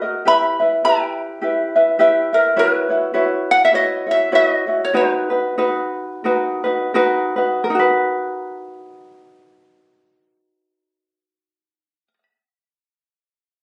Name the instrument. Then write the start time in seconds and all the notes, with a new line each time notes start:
ukulele
Already playing: A#5
0.02 F#4 A#4 D#5
0.25 E4 G4 B4 E5 B5
0.60 E4 B4 E5
0.84 E4 G4 B4 E5 G5
1.42 E4 G4 B4 E5
1.76 E4 B4 E5
1.99 E4 G4 B4 E5
2.33 E4 A#4 B4 E5
2.56 E4 F#4 A#4 B4 C#5
2.70 B4
2.89 E4 F#4 C#5
3.14 E4 F#4 B4 C#5
3.51 F#5
3.65 E5
3.71 E4 F#4 B4 C#5 D#5
4.06 E4 F#4 C#5
4.11 E5
4.32 E4 F#4 B4 C#5 E5
4.47 D#5
4.67 E4 F#4 C#5
4.85 C#5
4.93 D#4 F#4 A#4 B4 C5
5.14 B4
5.30 D#4 F#4 B4
5.58 D#4 F#4 B4
6.24 D#4 F#4 A#4 B4
6.64 D#4 F#4 B4
6.94 D#4 F#4 A#4 B4
7.36 D#4 F#4 B4
7.64 A#4
7.70 D#4
7.75 F#4
7.79 B4